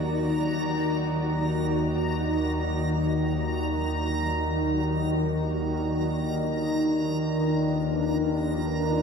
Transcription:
Already playing: D#2 D#3 D#4 F#4 D5 A#5
5.19 D4
5.81 F4
6.11 B4

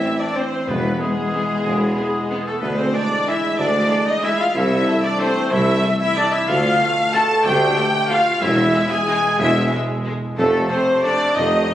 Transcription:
Already playing: E3 C4 E4 E5
0.02 C4
0.19 D4 D5
0.36 C4 C5
0.67 E1 E2 E3 B3 B4
1.00 G#3 B3 G#4
1.34 B3
1.65 E1 E2
1.97 B3
2.31 B3
2.46 A3 A4
2.61 D2 E3 G#3 B3 B4
2.77 C4 C5
2.93 G#3 D4 D5
3.27 G#3 E4 E5
3.58 D2 D4 D5
3.90 G#3
4.07 D#4 D#5
4.23 G#3 E4 E5
4.39 F4 F5
4.54 C2 E3 A3 E4 E5
4.86 A3
5.03 D4 D5
5.19 A3 C4 C5
5.50 C2 E4 E5
5.82 A3
6.00 E4 E5
6.16 A3 D4 D5
6.31 E4 E5
6.47 D2 B2 A3 F4 F5
6.81 A3
7.13 A3 A4 A5
7.44 D2 G4 G5
7.77 A3
8.09 A3 F4 F5
8.41 E1 E2 B2 G#3 E4 E5
8.74 G#3
8.90 G#4 G#5
9.08 G#3
9.39 E1 E2 E4 E5
9.72 G#3
10.06 G#3
10.37 F1 F2 C3 A3 A4
10.70 A3 C4 C5
11.03 A3 D4 D5
11.35 F1 F2 D#3 D#4 D#5
11.68 A3

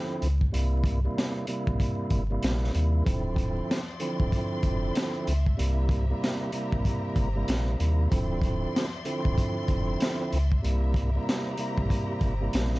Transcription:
Already playing: D3 F3 C4 E4
0.22 C#2, closed hi-hat
0.41 kick
0.52 C2 C3 G3 A#3 E4, closed hi-hat
0.84 kick, closed hi-hat
1.04 C3 G3 A#3 E4
1.18 snare, closed hi-hat
1.47 C3 G3 A#3 E4, closed hi-hat
1.67 A#1, kick
1.80 kick, closed hi-hat
2.10 G1, kick, closed hi-hat
2.30 C3 G3 A#3 E4
2.43 A#1, snare, closed hi-hat
2.64 snare
2.73 D#2 C3 G3 A#3 E4, closed hi-hat
3.05 D1 D3 F3 C4 E4 D5 E5 C6, kick, closed hi-hat
3.36 kick, closed hi-hat
3.71 snare, closed hi-hat
4.00 D3 F3 C4 E4, closed hi-hat
4.20 D1, kick
4.32 kick, closed hi-hat
4.63 F1, kick, closed hi-hat
4.95 snare, closed hi-hat
5.27 C#2, closed hi-hat
5.46 kick
5.57 C2 C3 G3 A#3 E4 G4 C5 A#5, closed hi-hat
5.89 kick, closed hi-hat
6.10 C3 G3 A#3 E4
6.24 snare, closed hi-hat
6.52 C3 G3 A#3 E4, closed hi-hat
6.72 A#1, kick
6.85 kick, closed hi-hat
7.16 G1, kick, closed hi-hat
7.35 C3 G3 A#3 E4
7.48 A#1, snare, closed hi-hat
7.78 D#2 C3 G3 A#3 E4, closed hi-hat
8.10 D1 D3 F3 C4 E4 D5 E5 C6, kick, closed hi-hat
8.42 kick, closed hi-hat
8.76 snare, closed hi-hat
9.05 D3 F3 C4 E4, closed hi-hat
9.25 D1, kick
9.38 kick, closed hi-hat
9.68 F1, kick, closed hi-hat
10.00 snare, closed hi-hat
10.32 C#2, closed hi-hat
10.52 kick
10.62 C2 C3 G3 A#3 E4 G4 C5 A#5, closed hi-hat
10.94 kick, closed hi-hat
11.15 C3 G3 A#3 E4
11.29 snare, closed hi-hat
11.58 C3 G3 A#3 E4, closed hi-hat
11.78 A#1, kick
11.90 kick, closed hi-hat
12.21 G1, kick, closed hi-hat
12.40 C3 G3 A#3 E4
12.53 A#1, snare, closed hi-hat
12.74 snare

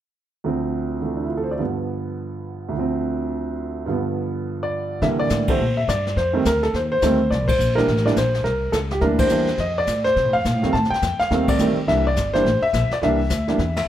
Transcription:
0.44 D2 D3 F3 C4
1.01 D3 E3 A3
1.17 D4
1.24 E4
1.30 F4
1.37 A4
1.44 C5
1.51 D5
1.58 G2 D3 F3 B3
2.69 D2 D3
2.76 F3 C4
3.86 G2 D3 F3
3.91 B3
4.63 D5
5.02 C3 D3 E3 G3 A#3 E5, brush sweep, kick, snare
5.19 D5
5.30 A2, kick, snare, hi-hat pedal
5.48 D3 E3 G3 A3 C5, kick, ride
5.58 A#2, brush sweep
5.77 E5
5.88 G2 D5, kick, snare, hi-hat pedal
6.07 snare
6.16 F2 C5, brush sweep, kick, snare
6.33 D#3 G3 A3 C4
6.45 D2 A#4, kick, snare, hi-hat pedal
6.63 A4, snare
6.74 D#2 C5, brush sweep, kick, snare
6.92 C5
7.02 D2 D#3 G3 A3 C4, kick, snare, hi-hat pedal
7.30 C2 D5, brush sweep, kick, snare
7.40 A#1
7.48 G1 C5, kick, ride
7.58 A#1, hi-hat pedal
7.75 E3 G3 A#3 D4 A#4, snare
7.88 A1, brush sweep, kick, snare
7.97 snare
8.05 E3 G3 A#3 D4 D5, snare
8.16 A#1 C5, kick, snare, hi-hat pedal
8.34 snare
8.44 C2 A#4, brush sweep, kick, snare
8.72 C#2 A4, kick, snare, hi-hat pedal
8.91 G4, snare
9.01 D2 E3 G3 A#3 D4 A#4, brush sweep, kick, snare
9.19 C5, kick, ride
9.29 E2 E3 G3 A#3 D4, hi-hat pedal
9.47 snare
9.58 F2 D#5, brush sweep, kick, snare
9.78 D5
9.87 A2, kick, snare, hi-hat pedal
10.04 C5, snare
10.16 C3, brush sweep, kick, snare
10.25 A2
10.33 F2 F5
10.45 A#2, kick, snare, hi-hat pedal
10.54 A2
10.63 F2 D#3 G3 A3 C4, snare
10.73 A2 A5, brush sweep, kick, snare
10.84 snare
10.90 G5, muted upright bass stroke, snare
11.02 F2, kick, snare, hi-hat pedal
11.20 F5, muted upright bass stroke, snare
11.30 D#2 D#3 G3 A3 C4, brush sweep, kick, snare
11.48 D5, kick, ride
11.59 D2 D#3 G3 A3 C4, hi-hat pedal
11.76 muted upright bass stroke
11.87 C2 E3 G3 A#3 D4 E5, brush sweep, kick, snare
12.07 D5
12.16 G1, kick, snare, hi-hat pedal
12.33 E3 G3 A#3 D4 C5, snare
12.45 A1, brush sweep, kick, snare
12.61 E5, muted upright bass stroke
12.73 A#1, kick, snare, hi-hat pedal
12.90 D5, muted upright bass stroke, snare
13.02 C2 E3 G3 A#3 D4 E5, brush sweep, kick, snare
13.30 D2, kick, snare, hi-hat pedal
13.48 E3 G3 A#3 D4, snare
13.58 E2, brush sweep, kick, snare
13.76 E5, snare, ride

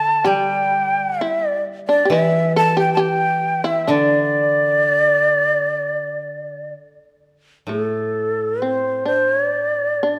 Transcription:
Already playing: D3 A4 A5
0.24 G3 G4 G5
1.20 E4 E5
1.48 D5
1.88 D4 D5
2.05 G4
2.10 E3 E4 E5
2.56 A4 A5
2.77 G4 G5
2.94 G4 A5
3.00 G5
3.64 E4 E5
3.88 D3 D4 D5
7.67 A2 A3
7.71 A4
8.62 C4 C5
9.05 D4 C5
9.31 C#5
9.47 D5
10.03 D4

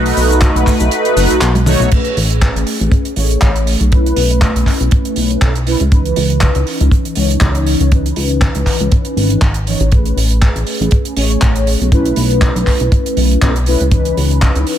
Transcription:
Already playing: B1 A3 D#4 F#4 B4
0.06 open hi-hat
0.17 B1, open hi-hat, cabasa
0.31 closed hi-hat, cabasa
0.41 kick, clap, closed hi-hat, cabasa
0.56 B1, closed hi-hat
0.67 B1, kick, clap, open hi-hat, cabasa
0.80 B1, closed hi-hat, cabasa
0.91 closed hi-hat, cabasa
1.05 closed hi-hat
1.16 F#1, open hi-hat, cabasa
1.30 B1, closed hi-hat, cabasa
1.41 B1, clap, closed hi-hat, cabasa
1.55 closed hi-hat, high tom
1.66 A3 D#4 F#4 C#5, open hi-hat, mid tom, cabasa
1.80 B1, closed hi-hat, mid tom, cabasa
1.91 A3 C#4 G#4 B4, kick, closed hi-hat, crash
2.05 closed hi-hat
2.17 A1, open hi-hat
2.31 closed hi-hat
2.41 kick, clap, closed hi-hat
2.56 A1, closed hi-hat
2.67 open hi-hat
2.81 A1, closed hi-hat
2.92 kick, closed hi-hat
3.05 closed hi-hat
3.16 A1 A3 C#4 G#4 C#5, open hi-hat
3.31 closed hi-hat
3.42 A1, kick, clap, closed hi-hat
3.56 closed hi-hat
3.67 open hi-hat
3.81 B1, closed hi-hat
3.91 A3 C#4 E4 B4, kick, closed hi-hat
4.06 closed hi-hat
4.16 B1, open hi-hat
4.30 closed hi-hat
4.42 kick, clap, closed hi-hat
4.56 B1, closed hi-hat
4.66 B1, kick, clap, open hi-hat
4.81 B1, closed hi-hat
4.91 kick, closed hi-hat
5.05 closed hi-hat
5.16 B1, open hi-hat
5.31 closed hi-hat
5.41 B1 A3 C#4 E4 B4, kick, clap, closed hi-hat
5.55 closed hi-hat
5.66 A3 C#4 E4 B4, open hi-hat
5.80 C#2, closed hi-hat
5.91 E3 C#4 D#4 B4, kick, closed hi-hat
6.05 closed hi-hat
6.16 C#2, open hi-hat
6.30 closed hi-hat
6.41 kick, clap, closed hi-hat
6.55 C#2, closed hi-hat
6.67 open hi-hat
6.81 C#2, closed hi-hat
6.91 kick, closed hi-hat
7.05 closed hi-hat
7.15 C#2 E3 C#4 D#4 C#5, open hi-hat
7.30 closed hi-hat
7.41 C#2, kick, clap, closed hi-hat
7.55 closed hi-hat
7.66 open hi-hat
7.80 C#2, closed hi-hat
7.91 E3 C#4 D#4 B4, kick, closed hi-hat
8.06 closed hi-hat
8.16 C#2, open hi-hat
8.29 closed hi-hat
8.41 kick, clap, closed hi-hat
8.55 C#2, closed hi-hat
8.66 C#2, kick, clap, open hi-hat
8.80 C#2, closed hi-hat
8.92 kick, closed hi-hat
9.05 closed hi-hat
9.17 G#1, open hi-hat
9.30 closed hi-hat
9.41 G#1, kick, clap, closed hi-hat
9.54 closed hi-hat
9.66 E3 C#4 D#4 C#5, open hi-hat
9.80 A1, closed hi-hat
9.91 A3 C#4 G#4 B4, kick, closed hi-hat
10.05 closed hi-hat
10.17 A1, open hi-hat
10.30 closed hi-hat
10.42 kick, clap, closed hi-hat
10.56 A1, closed hi-hat
10.67 open hi-hat
10.81 A1, closed hi-hat
10.91 kick, closed hi-hat
11.05 closed hi-hat
11.15 A1 A3 C#4 G#4 C#5, open hi-hat
11.30 closed hi-hat
11.42 A1, kick, clap, closed hi-hat
11.56 closed hi-hat
11.67 open hi-hat
11.81 B1, closed hi-hat
11.91 A3 C#4 E4 B4, kick, closed hi-hat
12.05 closed hi-hat
12.16 B1, open hi-hat
12.31 closed hi-hat
12.42 kick, clap, closed hi-hat
12.55 B1, closed hi-hat
12.67 B1, kick, clap, open hi-hat
12.80 B1, closed hi-hat
12.92 kick, closed hi-hat
13.06 closed hi-hat
13.17 B1, open hi-hat
13.32 closed hi-hat
13.41 B1 A3 C#4 E4 B4, kick, clap, closed hi-hat
13.56 closed hi-hat
13.66 A3 C#4 E4 B4, open hi-hat
13.81 C#2, closed hi-hat
13.91 E3 C#4 D#4 B4, kick, closed hi-hat
14.05 closed hi-hat
14.17 C#2, open hi-hat
14.31 closed hi-hat
14.42 kick, clap, closed hi-hat
14.56 C#2, closed hi-hat
14.67 open hi-hat

